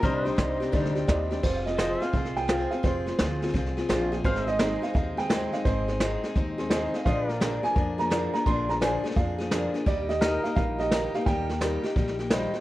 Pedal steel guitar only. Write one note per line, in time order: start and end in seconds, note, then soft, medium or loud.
0.03 0.28 A#4 medium
0.03 1.43 D#5 medium
0.28 1.43 C5 medium
1.79 4.22 C5 medium
1.79 2.05 D#5 medium
2.05 4.23 F5 medium
4.25 7.03 C5 medium
4.25 4.51 F5 medium
4.51 7.04 D#5 medium
7.06 7.31 C5 medium
7.06 7.27 D#5 medium
7.27 9.84 D5 medium
7.31 9.84 A#4 medium
10.21 12.60 A#4 medium
10.21 12.60 D#5 medium